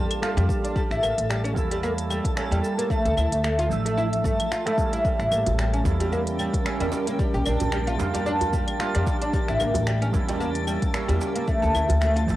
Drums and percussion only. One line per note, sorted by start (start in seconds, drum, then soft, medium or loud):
0.11 closed hi-hat medium
0.11 claves medium
0.11 shaker soft
0.23 finger snap medium
0.23 shaker soft
0.38 finger snap soft
0.38 closed hi-hat soft
0.38 shaker soft
0.49 kick loud
0.49 shaker medium
0.65 closed hi-hat medium
0.65 shaker soft
0.76 kick loud
0.76 shaker soft
0.91 finger snap soft
0.91 shaker soft
1.03 claves medium
1.03 shaker medium
1.18 closed hi-hat medium
1.18 shaker soft
1.31 finger snap loud
1.31 shaker soft
1.45 closed hi-hat soft
1.45 shaker soft
1.56 kick loud
1.56 shaker medium
1.71 closed hi-hat medium
1.71 shaker soft
1.83 shaker soft
1.98 closed hi-hat soft
1.98 shaker soft
2.11 claves medium
2.11 shaker medium
2.25 kick loud
2.25 closed hi-hat medium
2.25 shaker soft
2.37 finger snap loud
2.37 shaker soft
2.52 closed hi-hat soft
2.52 shaker soft
2.64 shaker medium
2.79 closed hi-hat medium
2.79 shaker soft
2.90 kick loud
2.90 shaker soft
3.06 closed hi-hat soft
3.06 shaker soft
3.17 claves medium
3.17 shaker medium
3.32 closed hi-hat medium
3.32 shaker soft
3.44 finger snap loud
3.44 shaker soft
3.59 closed hi-hat soft
3.59 shaker soft
3.71 shaker medium
3.86 closed hi-hat medium
3.86 shaker soft
3.98 shaker soft
4.13 closed hi-hat soft
4.13 shaker soft
4.24 kick loud
4.24 shaker medium
4.40 closed hi-hat medium
4.40 claves medium
4.40 shaker soft
4.52 finger snap loud
4.52 shaker soft
4.67 finger snap soft
4.67 closed hi-hat soft
4.67 shaker soft
4.78 kick loud
4.78 shaker medium
4.93 closed hi-hat medium
4.93 shaker soft
5.05 kick loud
5.05 shaker soft
5.20 finger snap soft
5.20 shaker soft
5.32 claves medium
5.32 shaker medium
5.46 closed hi-hat medium
5.46 djembe bass medium
5.46 shaker soft
5.59 finger snap loud
5.59 shaker soft
5.74 closed hi-hat soft
5.74 shaker soft
5.85 kick medium
5.85 djembe slap medium
5.85 shaker medium
6.00 closed hi-hat medium
6.00 djembe tone medium
6.00 shaker soft
6.12 shaker soft
6.27 closed hi-hat soft
6.27 shaker soft
6.39 claves medium
6.39 shaker medium
6.54 kick loud
6.54 closed hi-hat medium
6.54 shaker soft
6.66 finger snap loud
6.66 shaker soft
6.80 closed hi-hat soft
6.80 djembe tone medium
6.80 shaker soft
6.92 djembe slap medium
6.92 shaker medium
7.07 closed hi-hat medium
7.07 shaker soft
7.19 kick loud
7.19 shaker soft
7.34 djembe tone soft
7.34 shaker soft
7.46 claves medium
7.46 shaker medium
7.60 closed hi-hat medium
7.60 djembe bass medium
7.60 shaker soft
7.72 finger snap loud
7.72 shaker soft
7.87 closed hi-hat soft
7.87 shaker soft
7.99 djembe slap medium
7.99 shaker medium
8.14 closed hi-hat medium
8.14 djembe tone medium
8.14 shaker soft
8.26 shaker soft
8.41 closed hi-hat soft
8.41 djembe bass medium
8.41 shaker soft
8.53 kick loud
8.53 shaker medium
8.68 closed hi-hat medium
8.68 claves medium
8.68 shaker soft
8.80 finger snap loud
8.80 shaker soft
8.95 finger snap soft
8.95 closed hi-hat soft
8.95 shaker soft
9.07 kick loud
9.07 djembe slap medium
9.07 shaker medium
9.22 closed hi-hat medium
9.22 shaker soft
9.33 kick loud
9.33 shaker soft
9.48 finger snap soft
9.48 shaker soft
9.60 claves medium
9.60 shaker medium
9.74 closed hi-hat medium
9.74 djembe bass medium
9.74 shaker soft
9.87 finger snap loud
9.87 shaker soft
10.02 closed hi-hat soft
10.02 shaker soft
10.14 kick loud
10.14 djembe slap medium
10.14 shaker medium
10.29 closed hi-hat medium
10.29 djembe tone medium
10.29 shaker soft
10.41 shaker soft
10.55 closed hi-hat soft
10.55 shaker soft
10.67 claves medium
10.67 shaker medium
10.82 kick loud
10.82 closed hi-hat medium
10.82 shaker soft
10.94 finger snap loud
10.94 shaker soft
11.09 closed hi-hat soft
11.09 djembe tone medium
11.09 shaker soft
11.21 djembe slap medium
11.21 shaker medium
11.36 closed hi-hat medium
11.36 shaker soft
11.48 kick loud
11.48 shaker soft
11.63 djembe tone soft
11.63 shaker soft
11.75 claves medium
11.75 shaker medium
11.89 closed hi-hat medium
11.89 djembe bass medium
11.89 shaker soft
12.02 finger snap loud
12.02 shaker soft
12.17 closed hi-hat soft
12.17 shaker soft
12.28 kick medium
12.28 djembe slap medium
12.28 shaker medium